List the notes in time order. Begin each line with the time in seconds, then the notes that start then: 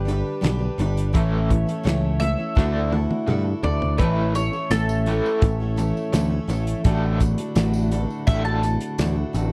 Already playing: G1 G3 D4 G4 B4
0.05 G2 D3 G3 D4 G4 B4, closed hi-hat
0.41 B1 G2 D3 G3 D4 G4 B4, snare, closed hi-hat
0.59 D4 G4 B4
0.78 G1 G2 D3 G3 D4 G4 B4, closed hi-hat
0.97 closed hi-hat
1.13 A1 A2 E3 A3 C#4 E4 A4 C#5 E5, kick, closed hi-hat
1.50 A2 E3, kick, closed hi-hat
1.66 A3 C#4 E4 C#5, closed hi-hat
1.83 C#2 A2 E3 A3 C#4 E4 C#5, snare, closed hi-hat
2.20 A2 E3 A3 C#4 E4 C#5 E5, closed hi-hat
2.38 A3 C#4 E4 C#5
2.55 D2 D3 A3 D4 E4 F#4 A4, kick, snare
2.73 E4 F#4 A4
2.92 D3 A3 E4 F#4 A4, high tom
3.11 high tom
3.27 G2 D3 A3 E4 F#4 A4, mid tom
3.44 E4 F#4 A4
3.63 D2 D3 A3 E4 F#4 A4 D5, floor tom
3.82 floor tom
3.98 A1 A2 E3 A3 C#4 E4 A4 B4 C#5 E5, kick, closed hi-hat
4.35 A2 E3 C#5, closed hi-hat, tambourine
4.52 A3 C#4 E4 A4, tambourine
4.70 A1 A2 E3 A3 C#4 E4 A4, snare, closed hi-hat, tambourine
4.89 tambourine
5.06 A2 E3 A3 C#4 E4 A4, closed hi-hat, tambourine
5.24 A3 C#4 E4 A4, tambourine
5.42 A1 A2 E3, kick, closed hi-hat, tambourine
5.60 A3 C#4 E4 A4
5.76 A2 E3 A3 C#4 E4 A4, closed hi-hat, tambourine
5.97 tambourine
6.12 D2 A2 E3 A3 C#4 E4 A4, snare, closed hi-hat, tambourine
6.30 A3 C#4 E4 A4
6.48 A1 A2 E3 A3 C#4 E4 A4, closed hi-hat, tambourine
6.67 closed hi-hat, tambourine
6.84 A1 A2 D3 E3 A3 D4 E4 F#4 A4, kick, closed hi-hat
7.20 A2 D3, kick, closed hi-hat, tambourine
7.38 A3 D4 F#4 A4, closed hi-hat, tambourine
7.55 A1 A2 D3 E3 A3 D4 F#4 A4, snare, closed hi-hat, tambourine
7.74 tambourine
7.91 A2 D3 A3 D4 F#4 A4, closed hi-hat, tambourine
8.10 tambourine
8.27 A1 A2 D3 A3 E5, kick, closed hi-hat, tambourine
8.44 A3 D4 F#4 A4 A5
8.62 A2 D3 A3 D4 F#4 A4, closed hi-hat, tambourine
8.81 closed hi-hat, tambourine
8.98 D2 A2 D3 E3 A3 D4 F#4 A4, snare, closed hi-hat, tambourine
9.15 A3 D4 F#4 A4
9.33 A1 A2 D3 A3 D4 F#4 A4, closed hi-hat, tambourine